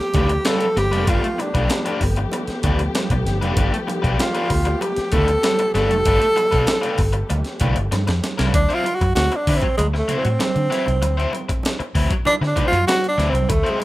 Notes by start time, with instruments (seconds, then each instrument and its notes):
Already playing: string section F3 A3 B3 G4, tenor saxophone G4
0.14 fingered electric bass D2, overdriven electric guitar A3 D4 F4 B4, kick, closed hi-hat, muted conga, low conga
0.29 muted overdriven electric guitar stroke, closed hi-hat
0.45 overdriven electric guitar A3 D4 F4 B4, tenor saxophone A4, snare, closed hi-hat, high conga
0.60 closed hi-hat
0.76 fingered electric bass G1, tenor saxophone G4, muted overdriven electric guitar stroke, snare, closed hi-hat, high conga
0.91 fingered electric bass F1, overdriven electric guitar A3 D4 F4 B4, closed hi-hat, high conga
1.06 fingered electric bass G1, overdriven electric guitar A3 D4 F4 B4, tenor saxophone F4, kick, closed hi-hat, muted conga
1.23 muted overdriven electric guitar stroke, closed hi-hat
1.38 tenor saxophone D4, muted overdriven electric guitar stroke, closed hi-hat, muted conga
1.54 fingered electric bass B1, overdriven electric guitar A3 D4 F4 B4, kick, closed hi-hat
1.69 muted overdriven electric guitar stroke, snare, closed hi-hat, high conga
1.85 overdriven electric guitar A3 D4 F4 B4, closed hi-hat
2.01 fingered electric bass G1, muted overdriven electric guitar stroke, kick, open hi-hat
2.16 muted overdriven electric guitar stroke, closed hi-hat
2.32 muted overdriven electric guitar stroke, closed hi-hat, muted conga
2.47 muted fingered electric bass stroke, snare, closed hi-hat
2.63 fingered electric bass D2, overdriven electric guitar A3 D4 F4 B4, kick, closed hi-hat, muted conga, low conga
2.79 muted overdriven electric guitar stroke, closed hi-hat
2.95 muted overdriven electric guitar stroke, snare, closed hi-hat, high conga
3.10 fingered electric bass B1, muted overdriven electric guitar stroke, kick, closed hi-hat
3.26 fingered electric bass G1, snare, closed hi-hat, high conga
3.41 fingered electric bass F1, overdriven electric guitar A3 D4 F4 B4, closed hi-hat, high conga
3.57 fingered electric bass G1, overdriven electric guitar A3 D4 F4 B4, kick, closed hi-hat, muted conga
3.72 muted overdriven electric guitar stroke, closed hi-hat
3.87 muted overdriven electric guitar stroke, closed hi-hat, muted conga
4.02 fingered electric bass B1, overdriven electric guitar A3 D4 F4 B4, kick, closed hi-hat
4.19 tenor saxophone F4, muted overdriven electric guitar stroke, snare, closed hi-hat, high conga
4.34 overdriven electric guitar A3 D4 F4 B4, closed hi-hat
4.49 fingered electric bass D2, muted overdriven electric guitar stroke, kick, open hi-hat
4.65 muted overdriven electric guitar stroke, closed hi-hat
4.81 tenor saxophone G4, muted overdriven electric guitar stroke, closed hi-hat, muted conga
4.96 muted fingered electric bass stroke, snare, closed hi-hat
5.12 fingered electric bass D2, overdriven electric guitar A3 D4 F4 B4, tenor saxophone A4, kick, closed hi-hat, low conga
5.28 muted overdriven electric guitar stroke, closed hi-hat
5.43 muted overdriven electric guitar stroke, snare, closed hi-hat, high conga
5.59 muted overdriven electric guitar stroke, closed hi-hat
5.74 fingered electric bass G1, overdriven electric guitar A3 D4 F4 B4, tenor saxophone A4, snare, closed hi-hat, high conga
5.90 fingered electric bass F1, muted overdriven electric guitar stroke, closed hi-hat, high conga
6.05 fingered electric bass G1, overdriven electric guitar A3 D4 F4 B4, kick, closed hi-hat, muted conga
6.20 muted overdriven electric guitar stroke, closed hi-hat
6.36 muted overdriven electric guitar stroke, closed hi-hat, muted conga
6.51 fingered electric bass B1, overdriven electric guitar A3 D4 F4 B4, kick, closed hi-hat
6.66 muted overdriven electric guitar stroke, snare, closed hi-hat, high conga
6.81 overdriven electric guitar A3 D4 F4 B4, closed hi-hat
6.97 fingered electric bass G1, muted overdriven electric guitar stroke, kick, open hi-hat
7.13 muted overdriven electric guitar stroke, closed hi-hat
7.30 fingered electric bass D2, muted overdriven electric guitar stroke, closed hi-hat, muted conga
7.44 snare, closed hi-hat
7.60 fingered electric bass B1, overdriven electric guitar A3 D4 F4 B4, kick, closed hi-hat, muted conga, low conga
7.76 fingered electric bass G1, muted overdriven electric guitar stroke, closed hi-hat
7.91 fingered electric bass G2, muted overdriven electric guitar stroke, snare, closed hi-hat, high conga
8.07 fingered electric bass F2, muted overdriven electric guitar stroke, snare, closed hi-hat
8.23 snare, closed hi-hat, high conga
8.38 fingered electric bass C2, overdriven electric guitar A3 D4 F4 B4, snare, closed hi-hat, high conga
8.54 fingered electric bass D2, tenor saxophone D4, muted overdriven electric guitar stroke, kick, closed hi-hat, muted conga
8.69 overdriven electric guitar F#3 C4 E4 C5, closed hi-hat
8.74 tenor saxophone F4
8.84 muted overdriven electric guitar stroke, closed hi-hat, muted conga
8.95 tenor saxophone F#4
9.01 fingered electric bass F#2, muted overdriven electric guitar stroke, kick, closed hi-hat
9.15 fingered electric bass D2, tenor saxophone F#4, snare, closed hi-hat, high conga
9.32 muted overdriven electric guitar stroke, closed hi-hat
9.36 tenor saxophone D4
9.47 fingered electric bass D3, overdriven electric guitar F#3 C4 E4 B4, kick, open hi-hat
9.57 tenor saxophone C4
9.61 muted overdriven electric guitar stroke, kick, closed hi-hat
9.77 fingered electric bass D2, tenor saxophone G#3, muted overdriven electric guitar stroke, closed hi-hat, muted conga
9.94 muted overdriven electric guitar stroke, snare
9.98 tenor saxophone A3
10.08 overdriven electric guitar F#3 C4 E4 C5, closed hi-hat, low conga
10.18 tenor saxophone C4
10.24 fingered electric bass A2, muted overdriven electric guitar stroke, closed hi-hat
10.39 muted overdriven electric guitar stroke, snare, closed hi-hat, high conga
10.56 fingered electric bass D3, closed hi-hat
10.70 overdriven electric guitar F#3 C4 E4 B4, snare, closed hi-hat
10.86 fingered electric bass C2, muted overdriven electric guitar stroke, closed hi-hat, high conga
11.02 fingered electric bass D2, muted overdriven electric guitar stroke, closed hi-hat, muted conga
11.17 overdriven electric guitar F#3 C4 E4 C5, closed hi-hat
11.32 muted overdriven electric guitar stroke, closed hi-hat, muted conga
11.49 muted overdriven electric guitar stroke, muted fingered electric bass stroke, kick, closed hi-hat
11.63 snare, closed hi-hat, high conga
11.79 muted overdriven electric guitar stroke, muted fingered electric bass stroke, closed hi-hat
11.95 fingered electric bass D2, overdriven electric guitar F#3 C4 E4 B4, kick, open hi-hat
12.10 muted overdriven electric guitar stroke, kick, closed hi-hat
12.25 tenor saxophone D4, muted overdriven electric guitar stroke, muted fingered electric bass stroke, closed hi-hat, muted conga
12.41 fingered electric bass D3, muted overdriven electric guitar stroke, snare
12.47 tenor saxophone D4
12.56 overdriven electric guitar F#3 C4 E4 C5, kick, closed hi-hat, muted conga, low conga
12.67 tenor saxophone F4
12.72 fingered electric bass F#2, muted overdriven electric guitar stroke, closed hi-hat
12.87 tenor saxophone F#4, muted overdriven electric guitar stroke, snare, closed hi-hat, high conga
13.04 closed hi-hat
13.09 tenor saxophone D4
13.18 fingered electric bass D2, overdriven electric guitar F#3 C4 E4 B4, snare, closed hi-hat
13.30 fingered electric bass C2, tenor saxophone C4, muted overdriven electric guitar stroke, high conga
13.35 closed hi-hat
13.49 fingered electric bass D2, tenor saxophone A3, muted overdriven electric guitar stroke, kick, closed hi-hat, muted conga
13.63 overdriven electric guitar F#3 C4 E4 C5, closed hi-hat
13.70 tenor saxophone G#3
13.79 muted overdriven electric guitar stroke, muted conga